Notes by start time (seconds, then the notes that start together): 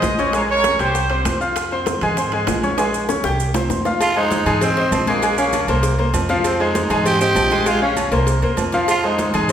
Already playing: G#3 G#4 C5 D#5 G#5
0.02 A#1, high bongo, low bongo, high conga, high timbale, low timbale, maracas
0.19 C#4 C#5 C#6, high conga, maracas
0.33 G#3 G#4 A#4 C#5 G#5, high bongo, high conga, high timbale, maracas
0.49 A#4 C#5, high bongo, high conga
0.64 C#4 C#5 C#6, high bongo, high conga, high timbale, low timbale, maracas
0.79 C2 G4 C5 G5 G6, high bongo, high conga, high timbale, maracas
0.95 high bongo, high conga, maracas
1.10 C4 C5 C6, high bongo, high conga, high timbale
1.25 F2, high bongo, low bongo, high conga, high timbale, low timbale, maracas
1.41 F4 F5 F6, maracas
1.56 high bongo, high conga, high timbale, maracas
1.71 C4 C5 C6, high bongo, high conga
1.86 high bongo, high conga, high timbale, low timbale, maracas
2.01 G#2 G#3 G#4 G#5, high bongo, low conga, high timbale, maracas
2.17 C4 C5 C6, high bongo, high conga, low conga, maracas
2.32 G#3 G#4 G#5, high bongo, high conga, high timbale
2.47 A#1, high bongo, low bongo, high conga, high timbale, low timbale, maracas
2.63 C#4 C#5 C#6, high conga, maracas
2.78 G#3 G#4 G#5, high bongo, high conga, high timbale, maracas
2.94 high bongo, high conga, maracas
3.09 C#4 C#5 C#6, high bongo, high conga, maracas
3.24 C2 G4 G5 G6, high bongo, high conga, maracas
3.40 high conga, maracas
3.54 C4 C5 C6, low bongo, low timbale, maracas
3.69 F2, low bongo, low timbale, maracas
3.85 F4 F5 F6, low bongo, low timbale, maracas
4.00 F4, cowbell, high conga, low agogo, maracas
4.16 G#3 D#4 G#4 C5, high conga, low agogo
4.31 cowbell, high conga, low timbale, maracas
4.46 G#2 G#3 G#4 G#5, cowbell, low conga, low agogo, maracas
4.61 C4 C5 D#5, cowbell, high conga, low conga, low agogo, maracas
4.77 C4 C5 D#5, cowbell, high conga
4.91 A#1 C4, cowbell, high conga, low timbale, low agogo, maracas
5.07 G#3 A#3 G#4 G#5, cowbell, high conga, maracas
5.22 G#3 G#4 G#5, cowbell, high conga, low agogo, maracas
5.38 C#4 C#5 F5, high conga, maracas
5.53 cowbell, high conga, low timbale, low agogo, maracas
5.68 C2 A#3 A#4 C5, cowbell, high conga, low agogo, maracas
5.83 cowbell, high conga, maracas
5.99 A#3 A#4 C5, high conga, low agogo
6.14 F2, cowbell, low timbale, low agogo, maracas
6.29 F3 F4 F5, cowbell, high conga, maracas
6.44 C4, cowbell, high conga, low agogo, maracas
6.60 G#3 D#4 G#4 C5, high conga, low agogo
6.75 cowbell, high conga, low timbale, maracas
6.90 G#2 G#3 G#4 G#5, cowbell, low conga, low agogo, maracas
7.05 C4 G4 C5 D#5, cowbell, high conga, low conga, low agogo, maracas
7.21 C4 G4 C5 D#5, cowbell, high conga, maracas
7.35 A#1, cowbell, high conga, low timbale, low agogo, maracas
7.51 G#3 G#4 G#5, cowbell, high conga, maracas
7.66 G#3 F4 G#4 G#5, cowbell, high conga, low agogo, maracas
7.82 C#4 C#5 F5, high conga
7.97 cowbell, high conga, low timbale, low agogo, maracas
8.11 C2 A#3 A#4 C5, cowbell, high conga, low agogo, maracas
8.27 cowbell, high conga, maracas
8.42 E2 A#3 A#4 C5, high conga, low agogo
8.57 F2, cowbell, high conga, low timbale, low agogo, maracas
8.72 F3 F4 F5, cowbell, high conga, maracas
8.88 F4, cowbell, high conga, low agogo, maracas
9.03 G#3 D#4 G#4 C5, high conga, low agogo
9.19 cowbell, high conga, low timbale, maracas
9.33 G#2 G#3 G#4 G#5, cowbell, low conga, low agogo, maracas
9.49 low agogo